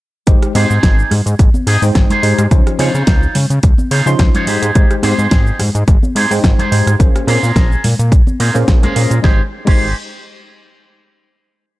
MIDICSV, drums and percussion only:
0, 0, Header, 1, 2, 480
1, 0, Start_track
1, 0, Key_signature, -4, "major"
1, 0, Tempo, 560748
1, 231, Time_signature, 4, 2, 24, 8
1, 10097, End_track
2, 0, Start_track
2, 0, Title_t, "Drums"
2, 232, Note_on_c, 9, 36, 120
2, 232, Note_on_c, 9, 42, 83
2, 234, Note_on_c, 9, 82, 55
2, 317, Note_off_c, 9, 42, 0
2, 318, Note_off_c, 9, 36, 0
2, 320, Note_off_c, 9, 82, 0
2, 364, Note_on_c, 9, 37, 73
2, 364, Note_on_c, 9, 42, 38
2, 366, Note_on_c, 9, 82, 31
2, 449, Note_off_c, 9, 37, 0
2, 449, Note_off_c, 9, 42, 0
2, 452, Note_off_c, 9, 82, 0
2, 472, Note_on_c, 9, 46, 112
2, 472, Note_on_c, 9, 63, 88
2, 557, Note_off_c, 9, 63, 0
2, 558, Note_off_c, 9, 46, 0
2, 605, Note_on_c, 9, 82, 65
2, 691, Note_off_c, 9, 82, 0
2, 712, Note_on_c, 9, 36, 121
2, 714, Note_on_c, 9, 42, 81
2, 715, Note_on_c, 9, 38, 122
2, 717, Note_on_c, 9, 82, 58
2, 797, Note_off_c, 9, 36, 0
2, 800, Note_off_c, 9, 38, 0
2, 800, Note_off_c, 9, 42, 0
2, 802, Note_off_c, 9, 82, 0
2, 848, Note_on_c, 9, 82, 32
2, 933, Note_off_c, 9, 82, 0
2, 951, Note_on_c, 9, 64, 73
2, 954, Note_on_c, 9, 37, 59
2, 954, Note_on_c, 9, 46, 107
2, 1036, Note_off_c, 9, 64, 0
2, 1039, Note_off_c, 9, 37, 0
2, 1039, Note_off_c, 9, 46, 0
2, 1084, Note_on_c, 9, 42, 39
2, 1087, Note_on_c, 9, 82, 66
2, 1170, Note_off_c, 9, 42, 0
2, 1172, Note_off_c, 9, 82, 0
2, 1192, Note_on_c, 9, 36, 122
2, 1192, Note_on_c, 9, 42, 87
2, 1194, Note_on_c, 9, 82, 55
2, 1278, Note_off_c, 9, 36, 0
2, 1278, Note_off_c, 9, 42, 0
2, 1280, Note_off_c, 9, 82, 0
2, 1319, Note_on_c, 9, 63, 68
2, 1324, Note_on_c, 9, 82, 34
2, 1404, Note_off_c, 9, 63, 0
2, 1409, Note_off_c, 9, 82, 0
2, 1430, Note_on_c, 9, 46, 110
2, 1515, Note_off_c, 9, 46, 0
2, 1562, Note_on_c, 9, 46, 64
2, 1564, Note_on_c, 9, 82, 70
2, 1647, Note_off_c, 9, 46, 0
2, 1650, Note_off_c, 9, 82, 0
2, 1671, Note_on_c, 9, 42, 81
2, 1672, Note_on_c, 9, 36, 117
2, 1672, Note_on_c, 9, 38, 119
2, 1674, Note_on_c, 9, 82, 54
2, 1757, Note_off_c, 9, 36, 0
2, 1757, Note_off_c, 9, 38, 0
2, 1757, Note_off_c, 9, 42, 0
2, 1759, Note_off_c, 9, 82, 0
2, 1798, Note_on_c, 9, 64, 86
2, 1801, Note_on_c, 9, 42, 58
2, 1804, Note_on_c, 9, 82, 36
2, 1884, Note_off_c, 9, 64, 0
2, 1887, Note_off_c, 9, 42, 0
2, 1889, Note_off_c, 9, 82, 0
2, 1911, Note_on_c, 9, 46, 102
2, 1997, Note_off_c, 9, 46, 0
2, 2042, Note_on_c, 9, 37, 74
2, 2042, Note_on_c, 9, 42, 54
2, 2044, Note_on_c, 9, 82, 67
2, 2128, Note_off_c, 9, 37, 0
2, 2128, Note_off_c, 9, 42, 0
2, 2130, Note_off_c, 9, 82, 0
2, 2151, Note_on_c, 9, 36, 124
2, 2152, Note_on_c, 9, 42, 76
2, 2154, Note_on_c, 9, 82, 54
2, 2237, Note_off_c, 9, 36, 0
2, 2237, Note_off_c, 9, 42, 0
2, 2240, Note_off_c, 9, 82, 0
2, 2284, Note_on_c, 9, 37, 73
2, 2284, Note_on_c, 9, 42, 37
2, 2286, Note_on_c, 9, 82, 32
2, 2370, Note_off_c, 9, 37, 0
2, 2370, Note_off_c, 9, 42, 0
2, 2372, Note_off_c, 9, 82, 0
2, 2387, Note_on_c, 9, 63, 80
2, 2390, Note_on_c, 9, 46, 113
2, 2472, Note_off_c, 9, 63, 0
2, 2476, Note_off_c, 9, 46, 0
2, 2523, Note_on_c, 9, 82, 66
2, 2609, Note_off_c, 9, 82, 0
2, 2629, Note_on_c, 9, 38, 126
2, 2629, Note_on_c, 9, 42, 83
2, 2631, Note_on_c, 9, 36, 124
2, 2631, Note_on_c, 9, 82, 52
2, 2714, Note_off_c, 9, 42, 0
2, 2715, Note_off_c, 9, 38, 0
2, 2717, Note_off_c, 9, 36, 0
2, 2717, Note_off_c, 9, 82, 0
2, 2763, Note_on_c, 9, 82, 32
2, 2849, Note_off_c, 9, 82, 0
2, 2868, Note_on_c, 9, 46, 113
2, 2869, Note_on_c, 9, 64, 75
2, 2954, Note_off_c, 9, 46, 0
2, 2954, Note_off_c, 9, 64, 0
2, 2999, Note_on_c, 9, 42, 39
2, 3002, Note_on_c, 9, 82, 66
2, 3085, Note_off_c, 9, 42, 0
2, 3087, Note_off_c, 9, 82, 0
2, 3108, Note_on_c, 9, 42, 80
2, 3110, Note_on_c, 9, 82, 56
2, 3111, Note_on_c, 9, 36, 123
2, 3193, Note_off_c, 9, 42, 0
2, 3196, Note_off_c, 9, 82, 0
2, 3197, Note_off_c, 9, 36, 0
2, 3236, Note_on_c, 9, 63, 71
2, 3242, Note_on_c, 9, 82, 33
2, 3322, Note_off_c, 9, 63, 0
2, 3328, Note_off_c, 9, 82, 0
2, 3348, Note_on_c, 9, 46, 113
2, 3434, Note_off_c, 9, 46, 0
2, 3483, Note_on_c, 9, 82, 68
2, 3569, Note_off_c, 9, 82, 0
2, 3587, Note_on_c, 9, 38, 124
2, 3587, Note_on_c, 9, 42, 76
2, 3590, Note_on_c, 9, 82, 52
2, 3592, Note_on_c, 9, 36, 121
2, 3673, Note_off_c, 9, 38, 0
2, 3673, Note_off_c, 9, 42, 0
2, 3675, Note_off_c, 9, 82, 0
2, 3677, Note_off_c, 9, 36, 0
2, 3718, Note_on_c, 9, 64, 77
2, 3720, Note_on_c, 9, 42, 53
2, 3722, Note_on_c, 9, 82, 34
2, 3804, Note_off_c, 9, 64, 0
2, 3806, Note_off_c, 9, 42, 0
2, 3808, Note_off_c, 9, 82, 0
2, 3828, Note_on_c, 9, 46, 113
2, 3913, Note_off_c, 9, 46, 0
2, 3960, Note_on_c, 9, 42, 53
2, 3962, Note_on_c, 9, 82, 65
2, 4045, Note_off_c, 9, 42, 0
2, 4048, Note_off_c, 9, 82, 0
2, 4069, Note_on_c, 9, 42, 77
2, 4071, Note_on_c, 9, 36, 127
2, 4072, Note_on_c, 9, 82, 54
2, 4155, Note_off_c, 9, 42, 0
2, 4157, Note_off_c, 9, 36, 0
2, 4157, Note_off_c, 9, 82, 0
2, 4199, Note_on_c, 9, 37, 76
2, 4199, Note_on_c, 9, 42, 37
2, 4202, Note_on_c, 9, 82, 31
2, 4285, Note_off_c, 9, 37, 0
2, 4285, Note_off_c, 9, 42, 0
2, 4287, Note_off_c, 9, 82, 0
2, 4303, Note_on_c, 9, 63, 95
2, 4308, Note_on_c, 9, 46, 113
2, 4389, Note_off_c, 9, 63, 0
2, 4393, Note_off_c, 9, 46, 0
2, 4441, Note_on_c, 9, 82, 62
2, 4526, Note_off_c, 9, 82, 0
2, 4548, Note_on_c, 9, 38, 120
2, 4548, Note_on_c, 9, 42, 78
2, 4550, Note_on_c, 9, 82, 53
2, 4551, Note_on_c, 9, 36, 127
2, 4634, Note_off_c, 9, 38, 0
2, 4634, Note_off_c, 9, 42, 0
2, 4636, Note_off_c, 9, 36, 0
2, 4636, Note_off_c, 9, 82, 0
2, 4680, Note_on_c, 9, 82, 33
2, 4766, Note_off_c, 9, 82, 0
2, 4789, Note_on_c, 9, 37, 61
2, 4789, Note_on_c, 9, 46, 113
2, 4794, Note_on_c, 9, 64, 88
2, 4875, Note_off_c, 9, 37, 0
2, 4875, Note_off_c, 9, 46, 0
2, 4879, Note_off_c, 9, 64, 0
2, 4923, Note_on_c, 9, 42, 37
2, 4925, Note_on_c, 9, 82, 64
2, 5008, Note_off_c, 9, 42, 0
2, 5011, Note_off_c, 9, 82, 0
2, 5031, Note_on_c, 9, 36, 122
2, 5031, Note_on_c, 9, 42, 77
2, 5033, Note_on_c, 9, 82, 54
2, 5116, Note_off_c, 9, 36, 0
2, 5116, Note_off_c, 9, 42, 0
2, 5119, Note_off_c, 9, 82, 0
2, 5160, Note_on_c, 9, 63, 65
2, 5167, Note_on_c, 9, 82, 33
2, 5246, Note_off_c, 9, 63, 0
2, 5252, Note_off_c, 9, 82, 0
2, 5272, Note_on_c, 9, 46, 120
2, 5357, Note_off_c, 9, 46, 0
2, 5404, Note_on_c, 9, 46, 70
2, 5406, Note_on_c, 9, 82, 65
2, 5489, Note_off_c, 9, 46, 0
2, 5492, Note_off_c, 9, 82, 0
2, 5511, Note_on_c, 9, 36, 124
2, 5514, Note_on_c, 9, 38, 121
2, 5514, Note_on_c, 9, 42, 80
2, 5516, Note_on_c, 9, 82, 54
2, 5597, Note_off_c, 9, 36, 0
2, 5600, Note_off_c, 9, 38, 0
2, 5600, Note_off_c, 9, 42, 0
2, 5602, Note_off_c, 9, 82, 0
2, 5641, Note_on_c, 9, 64, 87
2, 5645, Note_on_c, 9, 42, 51
2, 5647, Note_on_c, 9, 82, 34
2, 5726, Note_off_c, 9, 64, 0
2, 5730, Note_off_c, 9, 42, 0
2, 5733, Note_off_c, 9, 82, 0
2, 5754, Note_on_c, 9, 46, 111
2, 5839, Note_off_c, 9, 46, 0
2, 5884, Note_on_c, 9, 37, 82
2, 5884, Note_on_c, 9, 42, 52
2, 5886, Note_on_c, 9, 82, 63
2, 5969, Note_off_c, 9, 37, 0
2, 5969, Note_off_c, 9, 42, 0
2, 5972, Note_off_c, 9, 82, 0
2, 5991, Note_on_c, 9, 36, 126
2, 5992, Note_on_c, 9, 42, 77
2, 5995, Note_on_c, 9, 82, 54
2, 6077, Note_off_c, 9, 36, 0
2, 6078, Note_off_c, 9, 42, 0
2, 6080, Note_off_c, 9, 82, 0
2, 6126, Note_on_c, 9, 37, 79
2, 6126, Note_on_c, 9, 42, 34
2, 6128, Note_on_c, 9, 82, 33
2, 6211, Note_off_c, 9, 37, 0
2, 6211, Note_off_c, 9, 42, 0
2, 6214, Note_off_c, 9, 82, 0
2, 6227, Note_on_c, 9, 63, 80
2, 6232, Note_on_c, 9, 46, 113
2, 6312, Note_off_c, 9, 63, 0
2, 6318, Note_off_c, 9, 46, 0
2, 6366, Note_on_c, 9, 82, 63
2, 6451, Note_off_c, 9, 82, 0
2, 6471, Note_on_c, 9, 36, 127
2, 6475, Note_on_c, 9, 38, 119
2, 6475, Note_on_c, 9, 42, 77
2, 6477, Note_on_c, 9, 82, 57
2, 6556, Note_off_c, 9, 36, 0
2, 6560, Note_off_c, 9, 42, 0
2, 6561, Note_off_c, 9, 38, 0
2, 6563, Note_off_c, 9, 82, 0
2, 6608, Note_on_c, 9, 82, 31
2, 6693, Note_off_c, 9, 82, 0
2, 6712, Note_on_c, 9, 46, 109
2, 6715, Note_on_c, 9, 64, 82
2, 6798, Note_off_c, 9, 46, 0
2, 6801, Note_off_c, 9, 64, 0
2, 6844, Note_on_c, 9, 42, 36
2, 6846, Note_on_c, 9, 82, 67
2, 6929, Note_off_c, 9, 42, 0
2, 6932, Note_off_c, 9, 82, 0
2, 6950, Note_on_c, 9, 36, 121
2, 6953, Note_on_c, 9, 42, 77
2, 6955, Note_on_c, 9, 82, 55
2, 7036, Note_off_c, 9, 36, 0
2, 7038, Note_off_c, 9, 42, 0
2, 7041, Note_off_c, 9, 82, 0
2, 7079, Note_on_c, 9, 63, 68
2, 7085, Note_on_c, 9, 82, 34
2, 7164, Note_off_c, 9, 63, 0
2, 7171, Note_off_c, 9, 82, 0
2, 7191, Note_on_c, 9, 46, 109
2, 7276, Note_off_c, 9, 46, 0
2, 7322, Note_on_c, 9, 82, 72
2, 7408, Note_off_c, 9, 82, 0
2, 7430, Note_on_c, 9, 36, 123
2, 7430, Note_on_c, 9, 42, 72
2, 7431, Note_on_c, 9, 38, 121
2, 7433, Note_on_c, 9, 82, 54
2, 7516, Note_off_c, 9, 36, 0
2, 7516, Note_off_c, 9, 38, 0
2, 7516, Note_off_c, 9, 42, 0
2, 7518, Note_off_c, 9, 82, 0
2, 7561, Note_on_c, 9, 42, 55
2, 7563, Note_on_c, 9, 64, 90
2, 7563, Note_on_c, 9, 82, 35
2, 7646, Note_off_c, 9, 42, 0
2, 7648, Note_off_c, 9, 64, 0
2, 7649, Note_off_c, 9, 82, 0
2, 7671, Note_on_c, 9, 46, 107
2, 7757, Note_off_c, 9, 46, 0
2, 7801, Note_on_c, 9, 42, 51
2, 7803, Note_on_c, 9, 82, 65
2, 7886, Note_off_c, 9, 42, 0
2, 7889, Note_off_c, 9, 82, 0
2, 7909, Note_on_c, 9, 38, 81
2, 7910, Note_on_c, 9, 36, 118
2, 7994, Note_off_c, 9, 38, 0
2, 7995, Note_off_c, 9, 36, 0
2, 8278, Note_on_c, 9, 49, 86
2, 8280, Note_on_c, 9, 36, 111
2, 8364, Note_off_c, 9, 49, 0
2, 8365, Note_off_c, 9, 36, 0
2, 10097, End_track
0, 0, End_of_file